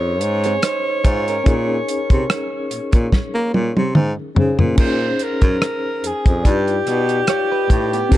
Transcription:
Already playing: baritone saxophone F2, tine electric piano C#4 D#4 G#4 A#4, alto saxophone C#5
0.21 baritone saxophone G#2, closed hi-hat
0.44 clean electric guitar C4 G#4, closed hi-hat
0.62 clean electric guitar D#4 C5, cross-stick, closed hi-hat
1.04 baritone saxophone G#2, clean electric guitar F4 C#5, kick, closed hi-hat
1.28 clean electric guitar C#4 A#4, closed hi-hat
1.44 baritone saxophone A#2, tine electric piano C#4 D#4 G#4, kick, closed hi-hat
1.49 tine electric piano A#4
1.88 closed hi-hat
2.10 baritone saxophone C3, kick, closed hi-hat
2.30 cross-stick, closed hi-hat
2.71 baritone saxophone A#2, closed hi-hat
2.93 baritone saxophone A#2, kick, closed hi-hat
3.12 kick, snare
3.35 baritone saxophone A#3
3.54 baritone saxophone A#2, high tom
3.77 baritone saxophone C3, high tom
3.95 baritone saxophone G#2, mid tom
4.35 baritone saxophone C#3, tine electric piano C#4 D#4 G#4 C5, floor tom
4.59 baritone saxophone A#2, floor tom
4.76 baritone saxophone A#2, tine electric piano C#4 D#4 G#4, kick, crash
4.80 alto saxophone C5, tine electric piano C5
5.19 alto saxophone A#4, closed hi-hat
5.42 baritone saxophone F#2, kick, closed hi-hat
5.62 cross-stick, closed hi-hat
6.03 baritone saxophone F2, alto saxophone G#4, closed hi-hat
6.26 baritone saxophone F2, kick, closed hi-hat
6.42 baritone saxophone G2, tine electric piano D#4 F4 D5, kick, closed hi-hat
6.47 alto saxophone G4, tine electric piano B4
6.68 closed hi-hat
6.87 baritone saxophone B2, cross-stick, closed hi-hat
7.09 closed hi-hat
7.27 clean electric guitar F4 C#5, cross-stick, closed hi-hat
7.52 clean electric guitar D#4 B4
7.70 baritone saxophone A2, kick, closed hi-hat
7.93 clean electric guitar B3 G4, closed hi-hat
8.09 baritone saxophone C3, tine electric piano C4 D#4 F#4, kick, closed hi-hat
8.14 tine electric piano A#4

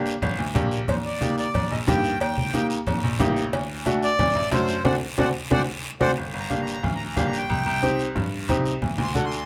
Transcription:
Already playing: upright piano A#3 D4 G4
0.06 short guiro
0.22 grand piano G1, cowbell, low conga, long guiro
0.38 grand piano D2
0.54 grand piano A#1, upright piano A#3 D4 G4, cowbell, high conga, low conga, short guiro
0.71 short guiro
0.88 grand piano D#2, accordion C5, cowbell, low conga, long guiro
1.05 accordion D5
1.21 upright piano A#3 D#4 G4, cowbell, high conga, short guiro
1.38 accordion D5, short guiro
1.54 grand piano D#2, cowbell, low conga, long guiro
1.71 grand piano A#1, accordion D#5
1.87 grand piano G2, upright piano A#3 D#4 G4, accordion G5, cowbell, high conga, low conga, short guiro
2.04 short guiro
2.20 grand piano D#2, accordion G5, cowbell, long guiro
2.38 high conga
2.53 upright piano A#3 D#4 G4, cowbell, high conga, short guiro
2.70 short guiro
2.87 grand piano D#2, cowbell, low conga, long guiro
3.04 grand piano A#1
3.19 grand piano A1, upright piano A#3 D#4 G4, cowbell, high conga, low conga, low timbale, short guiro
3.36 short guiro
3.53 grand piano D2, cowbell, long guiro
3.86 upright piano A3 D4 F#4, cowbell, high conga, short guiro
4.03 accordion D5, short guiro
4.19 grand piano D2, cowbell, low conga, long guiro
4.35 grand piano A1
4.51 grand piano F#2, upright piano A3 D4 F#4, accordion C5, cowbell, high conga, short guiro
4.68 short guiro
4.84 grand piano D2, upright piano C4 D4 F#4, accordion C5 D5 F#5, high conga, high timbale, long guiro
5.18 grand piano D2, upright piano C4 D4 F#4, accordion C5 D5 F#5, high conga, high timbale, long guiro
5.51 grand piano D2, upright piano C4 D4 F#4, accordion C5 D5 F#5, high conga, high timbale, long guiro
6.01 grand piano D2, upright piano C4 D4 F#4, accordion C5 D5 F#5, high conga, high timbale, long guiro
6.17 grand piano G1, long guiro
6.34 grand piano G1
6.40 accordion A#5
6.50 upright piano A#3 D4 G4, accordion F5, high conga, short guiro
6.61 accordion A#5
6.67 short guiro
6.73 accordion A#5
6.83 grand piano D2, accordion F5, low conga, long guiro
6.95 accordion A#5
7.05 accordion A#5
7.16 grand piano G1, upright piano A#3 D4 G4, accordion F5, high conga, low conga, short guiro
7.26 accordion A#5
7.33 short guiro
7.38 accordion G5
7.50 grand piano C2, low conga, long guiro
7.66 grand piano C2
7.83 upright piano C4 D#4 G4, high conga, short guiro
7.99 short guiro
8.15 grand piano G2, low conga, long guiro
8.49 grand piano C2, upright piano C4 D#4 G4, high conga, low conga, short guiro
8.66 short guiro
8.82 grand piano D2, low conga, long guiro
8.98 grand piano D2, high conga
9.03 accordion C6
9.14 upright piano D4 F#4 A4, accordion F#5, high conga, short guiro
9.25 accordion C6
9.32 short guiro
9.37 accordion C6

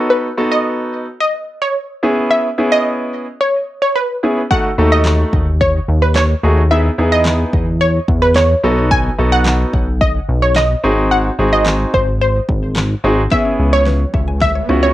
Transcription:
Already playing: grand piano B3 D#4 F#4 A4
0.10 synth pluck B4
0.38 grand piano B3 D#4 F#4 A4
0.52 synth pluck D#5
1.20 synth pluck D#5
1.62 synth pluck C#5
2.03 grand piano B3 C#4 E4 G#4
2.31 synth pluck E5
2.58 grand piano B3 C#4 E4 G#4
2.72 synth pluck D#5
3.41 synth pluck C#5
3.82 synth pluck C#5
3.96 synth pluck B4
4.23 grand piano B3 C#4 E4 G#4
4.51 grand piano A3 D#4 F#4 A4, synth pluck F#5, kick
4.78 analog synth bass D#2, grand piano A3 D#4 F#4 A4
4.92 synth pluck D#5
5.05 snare, clap
5.33 analog synth bass D#2, kick
5.61 synth pluck C#5, kick
5.88 analog synth bass D#2
6.02 synth pluck B4
6.15 synth pluck C#5, snare, clap
6.43 analog synth bass D#2, grand piano A3 D#4 F#4 G#4
6.71 grand piano B3 D#4 E4 G#4, synth pluck E5
6.98 analog synth bass E2, grand piano B3 D#4 E4 G#4
7.12 synth pluck D#5
7.25 snare, clap
7.53 analog synth bass E2, kick
7.81 synth pluck C#5
8.08 analog synth bass E2, kick
8.22 synth pluck B4
8.35 synth pluck C#5, snare, clap
8.63 analog synth bass B1, grand piano B3 D#4 F#4 A4
8.91 synth pluck G#5, kick
9.18 analog synth bass B1, grand piano B3 D#4 F#4 A4
9.32 synth pluck F#5
9.45 snare, clap
9.73 analog synth bass B1, kick
10.01 synth pluck D#5, kick
10.29 analog synth bass B1
10.42 synth pluck C#5
10.56 synth pluck D#5, snare, clap
10.84 analog synth bass G#1, grand piano C4 D#4 F#4 G#4
11.11 synth pluck F#5
11.39 analog synth bass G#1, grand piano C4 D#4 F#4 G#4
11.53 synth pluck D#5
11.66 snare, clap
11.94 analog synth bass G#1, synth pluck C5, kick
12.21 synth pluck C5
12.49 analog synth bass G#1, kick
12.76 snare, clap
13.04 analog synth bass G#1, grand piano C4 D#4 F#4 G#4
13.31 grand piano B3 C#4 E4 G#4, synth arpeggio sound B3, synth pluck E5, kick, snare, riser
13.45 synth arpeggio sound C#4
13.59 analog synth bass C#2
13.73 synth pluck C#5
13.86 synth arpeggio sound B4, snare
14.14 analog synth bass C#2, synth arpeggio sound E5, kick
14.28 synth arpeggio sound G#5
14.42 synth arpeggio sound E5, synth pluck E5, kick, snare
14.55 synth arpeggio sound C#5
14.69 analog synth bass C#2, grand piano B3 C#4 E4 F#4, synth arpeggio sound B4
14.83 synth pluck C#5

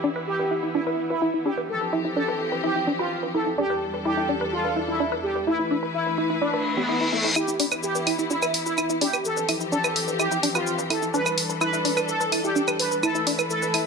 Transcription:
Already playing: string section E3 B3 E4
0.04 synth arpeggio sound D4
0.16 synth arpeggio sound B4
0.27 analog polysynth G4
0.39 synth arpeggio sound B4
0.51 synth arpeggio sound E4
0.63 synth arpeggio sound E4
0.74 synth arpeggio sound D4, analog polysynth E4
0.87 synth arpeggio sound B4
1.10 analog polysynth E4, synth arpeggio sound B4
1.22 synth arpeggio sound E4
1.34 synth arpeggio sound E4
1.46 synth arpeggio sound D4, analog polysynth G4
1.57 synth arpeggio sound B4
1.69 string section E3 F3 C4 G4, analog polysynth A4
1.81 synth arpeggio sound B4
1.93 synth arpeggio sound E4
2.05 synth arpeggio sound E4
2.16 synth arpeggio sound D4, analog polysynth A4
2.28 synth arpeggio sound B4
2.52 synth arpeggio sound B4
2.64 synth arpeggio sound E4, analog polysynth G4
2.76 synth arpeggio sound E4
2.87 synth arpeggio sound D4
2.99 analog polysynth F4, synth arpeggio sound B4
3.23 synth arpeggio sound B4
3.34 synth arpeggio sound E4, analog polysynth A4
3.46 synth arpeggio sound E4
3.58 string section E2 G3 D4 A4, synth arpeggio sound D4, analog polysynth G4
3.70 synth arpeggio sound B4
3.94 synth arpeggio sound B4
4.05 synth arpeggio sound E4, analog polysynth G4
4.17 synth arpeggio sound E4
4.29 synth arpeggio sound D4
4.41 synth arpeggio sound B4
4.53 analog polysynth F4
4.65 synth arpeggio sound B4
4.76 synth arpeggio sound E4
4.88 analog polysynth E4, synth arpeggio sound E4
5.00 synth arpeggio sound D4
5.12 synth arpeggio sound B4
5.23 analog polysynth G4
5.35 synth arpeggio sound B4
5.47 string section E3 A3 E4 B4, analog polysynth E4, synth arpeggio sound E4
5.59 synth arpeggio sound E4
5.71 synth arpeggio sound D4
5.83 synth arpeggio sound B4
5.94 analog polysynth E4
6.06 synth arpeggio sound B4
6.18 synth arpeggio sound E4
6.30 synth arpeggio sound E4
6.42 analog polysynth D4, synth arpeggio sound D4, reverse cymbal
6.54 synth arpeggio sound B4
6.77 analog polysynth B3, synth arpeggio sound G4
6.89 synth arpeggio sound E4
7.01 synth arpeggio sound E4
7.12 analog polysynth A3, synth arpeggio sound E4
7.24 synth arpeggio sound E4
7.36 string section E3 B3 E4, synth arpeggio sound E4, analog polysynth G4, claves, shaker
7.48 synth arpeggio sound E4, shaker
7.60 synth arpeggio sound D4, open hi-hat
7.72 synth arpeggio sound B4, claves, shaker
7.83 analog polysynth G4, shaker
7.95 synth arpeggio sound B4, shaker
8.07 synth arpeggio sound E4, open hi-hat, claves
8.19 synth arpeggio sound E4, shaker
8.30 synth arpeggio sound D4, analog polysynth E4, shaker
8.42 synth arpeggio sound B4, claves, shaker
8.54 open hi-hat
8.66 analog polysynth E4, synth arpeggio sound B4, shaker
8.78 synth arpeggio sound E4, claves, shaker
8.90 synth arpeggio sound E4, shaker
9.01 synth arpeggio sound D4, analog polysynth G4, open hi-hat
9.13 synth arpeggio sound B4, claves, shaker
9.25 string section E3 F3 C4 G4, analog polysynth A4, shaker
9.37 synth arpeggio sound B4, shaker
9.49 synth arpeggio sound E4, open hi-hat, claves
9.61 synth arpeggio sound E4, shaker
9.72 synth arpeggio sound D4, analog polysynth A4, shaker
9.84 synth arpeggio sound B4, claves, shaker
9.96 open hi-hat
10.08 synth arpeggio sound B4, shaker
10.19 synth arpeggio sound E4, analog polysynth G4, claves, shaker
10.31 synth arpeggio sound E4, shaker
10.43 synth arpeggio sound D4, open hi-hat
10.55 analog polysynth F4, synth arpeggio sound B4, claves, shaker
10.67 shaker
10.79 synth arpeggio sound B4, shaker
10.90 synth arpeggio sound E4, analog polysynth A4, open hi-hat, claves
11.02 synth arpeggio sound E4, shaker
11.14 string section G3 D4 A4, synth arpeggio sound D4, analog polysynth B4, shaker
11.26 synth arpeggio sound B4, claves, shaker
11.38 open hi-hat
11.49 synth arpeggio sound B4, shaker
11.61 synth arpeggio sound E4, analog polysynth B4, claves, shaker
11.73 synth arpeggio sound E4, shaker
11.85 synth arpeggio sound D4, open hi-hat
11.97 synth arpeggio sound B4, claves, shaker
12.08 analog polysynth A4, shaker
12.20 synth arpeggio sound B4, shaker
12.32 synth arpeggio sound E4, open hi-hat, claves
12.44 synth arpeggio sound E4, analog polysynth G4, shaker
12.56 synth arpeggio sound D4, shaker
12.68 synth arpeggio sound B4, claves, shaker
12.79 analog polysynth B4, open hi-hat
12.91 synth arpeggio sound B4, shaker
13.03 string section E3 A3 E4 B4, synth arpeggio sound E4, analog polysynth A4, claves, shaker
13.15 synth arpeggio sound E4, shaker
13.27 synth arpeggio sound D4, open hi-hat
13.39 synth arpeggio sound B4, claves, shaker
13.50 analog polysynth A4, shaker
13.62 synth arpeggio sound B4, shaker
13.74 synth arpeggio sound E4, open hi-hat, claves

